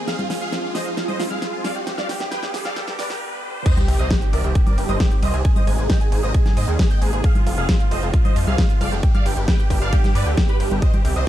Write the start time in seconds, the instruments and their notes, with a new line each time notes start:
Already playing: riser
0.07 analog synth pad F3 G#3 C4 G#4, supersaw synth G#4 F5, synth pluck F6, snare, closed hi-hat
0.19 supersaw synth F4, synth pluck F5, closed hi-hat, high conga
0.30 analog synth pad F3 G#3 C4 G#4, supersaw synth F4, synth pluck F5, snare, open hi-hat
0.41 supersaw synth G#4 F5, synth pluck F6, closed hi-hat
0.52 analog synth pad F3 G#3 C4 G#4, supersaw synth F4, synth pluck F5, snare, closed hi-hat
0.63 analog synth pad F3 G#3 C4 G#4, supersaw synth F4, synth pluck F5
0.75 supersaw synth C5 D#5, synth pluck D#6, snare, open hi-hat
0.86 analog synth pad F3 G#3 C4 G#4, supersaw synth F4, synth pluck F5, closed hi-hat
0.97 analog synth pad F3 G#3 C4 G#4, supersaw synth F4, synth pluck F5, snare, closed hi-hat
1.08 supersaw synth C5 D#5, synth pluck D#6, closed hi-hat, high conga
1.19 analog synth pad F3 G#3 C4 G#4, supersaw synth F4, synth pluck F5, snare, open hi-hat
1.30 supersaw synth G#4 F5, synth pluck F6, closed hi-hat, high conga
1.42 analog synth pad F3 G#3 C4 G#4, supersaw synth F4, synth pluck F5, snare, closed hi-hat
1.53 analog synth pad F3 G#3 C4 G#4, supersaw synth F4, synth pluck F5
1.64 supersaw synth D5 F5, synth pluck F6, snare, open hi-hat, high conga
1.75 analog synth pad F3 G#3 C4 G#4, supersaw synth G4, synth pluck G5, closed hi-hat
1.87 analog synth pad D3 G3 B3 G4, supersaw synth G4, synth pluck G5, snare, closed hi-hat
1.98 supersaw synth D5 F5, synth pluck F6, snare, closed hi-hat, high conga
2.09 analog synth pad D3 G3 B3 G4, supersaw synth G4, synth pluck G5, snare, open hi-hat
2.20 supersaw synth G4, synth pluck G5, snare, closed hi-hat
2.31 analog synth pad D3 G3 B3 G4, supersaw synth B4 G5, synth pluck G6, snare, closed hi-hat
2.42 analog synth pad D3 G3 B3 G4, supersaw synth G4, synth pluck G5, snare, closed hi-hat
2.54 supersaw synth G4, synth pluck G5, snare, open hi-hat
2.65 analog synth pad D3 G3 B3 G4, supersaw synth D5 F5, synth pluck F6, snare
2.76 analog synth pad D3 G3 B3 G4, supersaw synth G4, synth pluck G5, snare, closed hi-hat
2.87 supersaw synth G4, synth pluck G5, snare, closed hi-hat, high conga
2.98 analog synth pad D3 G3 B3 G4, supersaw synth B4 D5, synth pluck D6, snare, open hi-hat
3.10 supersaw synth G4, synth pluck G5, snare, open hi-hat
3.21 analog synth pad D3 G3 B3 G4
3.32 analog synth pad D3 G3 B3 G4
3.55 analog synth pad D3 G3 B3 G4
3.66 analog synth pad D#3 G3 C4 G4, supersaw synth C5 D#5, synth pluck D#6, kick, closed hi-hat, crash, sub drop
3.77 supersaw synth G4, synth pluck G5, closed hi-hat, high conga
3.88 analog synth bass C2, analog synth pad D#3 G3 C4 G4, supersaw synth G4, synth pluck G5, open hi-hat, ride
3.99 analog synth bass C2, supersaw synth C5 D#5, synth pluck D#6, closed hi-hat
4.10 analog synth pad D#3 G3 C4 G4, supersaw synth G4, synth pluck G5, kick, snare, closed hi-hat
4.22 analog synth pad D#3 G3 C4 G4, supersaw synth G4, synth pluck G5, closed hi-hat
4.33 analog synth bass C2, supersaw synth A#4 D5, synth pluck D6, open hi-hat, ride
4.44 analog synth bass C2, analog synth pad D#3 G3 C4 G4, supersaw synth G4, synth pluck G5, closed hi-hat
4.55 analog synth pad D#3 G3 C4 G4, supersaw synth G4, synth pluck G5, kick, closed hi-hat
4.67 supersaw synth A#4 D5, synth pluck D6, closed hi-hat, high conga
4.77 analog synth bass G1, analog synth pad D#3 G3 C4 G4, supersaw synth G4, synth pluck G5, open hi-hat, ride
4.89 analog synth bass G1, supersaw synth C5 D#5, synth pluck D#6, closed hi-hat, high conga
5.00 analog synth pad D#3 G3 C4 G4, supersaw synth G4, synth pluck G5, kick, snare, closed hi-hat
5.11 analog synth pad D#3 G3 C4 G4, supersaw synth G4, synth pluck G5, closed hi-hat
5.22 analog synth bass C2, supersaw synth C5 D#5, synth pluck D#6, open hi-hat, ride, high conga
5.33 analog synth bass C2, analog synth pad D#3 G3 C4 G4, supersaw synth G#4, synth pluck G#5, closed hi-hat
5.45 analog synth pad C3 G#3 A#3 D#4, supersaw synth G#4, synth pluck G#5, kick, closed hi-hat
5.56 supersaw synth C5 D#5, synth pluck D#6, closed hi-hat, high conga
5.67 analog synth bass G#1, analog synth pad C3 G#3 A#3 D#4, supersaw synth G#4, synth pluck G#5, open hi-hat, ride
5.78 analog synth bass G#1, supersaw synth G#4, synth pluck G#5, closed hi-hat
5.90 analog synth pad C3 G#3 A#3 D#4, supersaw synth D#5 G5, synth pluck G6, kick, snare, closed hi-hat
6.01 analog synth pad C3 G#3 A#3 D#4, supersaw synth G#4, synth pluck G#5, closed hi-hat
6.12 analog synth bass G#1, supersaw synth G#4, synth pluck G#5, open hi-hat, ride
6.23 analog synth bass G#1, analog synth pad C3 G#3 A#3 D#4, supersaw synth C5 D#5, synth pluck D#6, closed hi-hat
6.34 analog synth pad C3 G#3 A#3 D#4, supersaw synth G#4, synth pluck G#5, kick, closed hi-hat
6.46 supersaw synth G#4, synth pluck G#5, snare, closed hi-hat, high conga
6.57 analog synth bass G#2, analog synth pad C3 G#3 A#3 D#4, supersaw synth C5 D#5, synth pluck D#6, open hi-hat, ride
6.68 analog synth bass D#2, supersaw synth G#4, synth pluck G#5, closed hi-hat
6.79 analog synth pad C3 G#3 A#3 D#4, supersaw synth G#4, synth pluck G#5, kick, snare, closed hi-hat
6.90 analog synth pad C3 G#3 A#3 D#4, supersaw synth D#5 G5, synth pluck G6, closed hi-hat
7.01 analog synth bass G#1, supersaw synth G#4, synth pluck G#5, open hi-hat, ride
7.13 analog synth bass G#1, analog synth pad C3 G#3 A#3 D#4, supersaw synth G#4, synth pluck G#5, closed hi-hat
7.24 analog synth pad C3 F3 G#3 F4, supersaw synth G#4 F5, synth pluck F6, kick, closed hi-hat
7.35 supersaw synth F4, synth pluck F5, closed hi-hat, high conga
7.46 analog synth bass F1, analog synth pad C3 F3 G#3 F4, supersaw synth F4, synth pluck F5, open hi-hat, ride
7.57 analog synth bass F1, supersaw synth G#4 F5, synth pluck F6, closed hi-hat
7.69 analog synth pad C3 F3 G#3 F4, supersaw synth F4, synth pluck F5, kick, snare, closed hi-hat
7.80 analog synth pad C3 F3 G#3 F4, supersaw synth F4, synth pluck F5, closed hi-hat
7.91 analog synth bass F1, supersaw synth C5 D#5, synth pluck D#6, open hi-hat, ride
8.02 analog synth bass F1, analog synth pad C3 F3 G#3 F4, supersaw synth F4, synth pluck F5, closed hi-hat
8.14 analog synth pad C3 F3 G#3 F4, supersaw synth F4, synth pluck F5, kick, closed hi-hat
8.25 supersaw synth C5 D#5, synth pluck D#6, closed hi-hat, high conga
8.36 analog synth bass F2, analog synth pad C3 F3 G#3 F4, supersaw synth F4, synth pluck F5, open hi-hat, ride
8.47 analog synth bass C2, supersaw synth G#4 F5, synth pluck F6, closed hi-hat, high conga
8.58 analog synth pad C3 F3 G#3 F4, supersaw synth F4, synth pluck F5, kick, snare, closed hi-hat
8.70 analog synth pad C3 F3 G#3 F4, supersaw synth F4, synth pluck F5, closed hi-hat
8.81 analog synth bass F1, supersaw synth D5 F5, synth pluck F6, open hi-hat, ride, high conga
8.92 analog synth bass F1, analog synth pad C3 F3 G#3 F4, supersaw synth G4, synth pluck G5, closed hi-hat
9.03 analog synth pad D3 G3 B3 G4, supersaw synth G4, synth pluck G5, kick, closed hi-hat
9.15 supersaw synth D5 F5, synth pluck F6, closed hi-hat, high conga
9.25 analog synth bass G1, analog synth pad D3 G3 B3 G4, supersaw synth G4, synth pluck G5, open hi-hat, ride
9.37 analog synth bass G1, supersaw synth G4, synth pluck G5, closed hi-hat
9.48 analog synth pad D3 G3 B3 G4, supersaw synth B4 G5, synth pluck G6, kick, snare, closed hi-hat
9.59 analog synth pad D3 G3 B3 G4, supersaw synth G4, synth pluck G5, closed hi-hat
9.70 analog synth bass G1, supersaw synth G4, synth pluck G5, kick, open hi-hat, ride
9.81 analog synth bass G1, analog synth pad D3 G3 B3 G4, supersaw synth D5 F5, synth pluck F6, closed hi-hat
9.93 analog synth pad D3 G3 B3 G4, supersaw synth G4, synth pluck G5, kick, closed hi-hat
10.04 supersaw synth G4, synth pluck G5, snare, closed hi-hat, high conga
10.15 analog synth bass G2, analog synth pad D3 G3 B3 G4, supersaw synth B4 D5, synth pluck D6, open hi-hat, ride
10.26 analog synth bass D2, supersaw synth G4, synth pluck G5, closed hi-hat
10.37 analog synth pad D3 G3 B3 G4, supersaw synth G4, synth pluck G5, kick, snare, closed hi-hat
10.49 analog synth pad D3 G3 B3 G4, supersaw synth G4 B4, synth pluck B5, closed hi-hat
10.60 analog synth bass G1, supersaw synth G4, synth pluck G5, open hi-hat, ride
10.71 analog synth bass G1, analog synth pad D3 G3 B3 G4, supersaw synth G4, synth pluck G5, closed hi-hat, high conga
10.82 analog synth pad D#3 G3 C4 G4, supersaw synth C5 D#5, synth pluck D#6, kick, closed hi-hat
10.93 supersaw synth G4, synth pluck G5, closed hi-hat, high conga
11.05 analog synth bass C2, analog synth pad D#3 G3 C4 G4, supersaw synth G4, synth pluck G5, open hi-hat, ride
11.16 analog synth bass C2, supersaw synth C5 D#5, synth pluck D#6, closed hi-hat